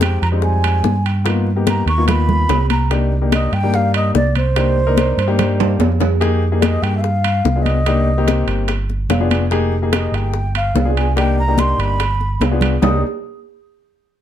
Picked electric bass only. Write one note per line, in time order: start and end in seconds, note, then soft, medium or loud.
0.00 0.16 F2 medium
0.22 0.80 F2 medium
0.84 1.81 G2 medium
1.86 2.45 D#2 medium
2.49 3.47 C2 medium
3.52 4.11 G2 medium
4.14 5.12 C2 medium
5.17 5.76 G2 medium
5.79 6.77 F2 medium
6.82 7.41 G2 medium
7.45 8.42 C2 loud
8.47 9.06 G1 medium
9.09 10.07 F1 medium
10.12 10.71 G1 medium
10.74 11.73 C2 medium
11.78 12.37 G1 medium
12.40 12.77 C2 medium
12.82 13.02 C2 medium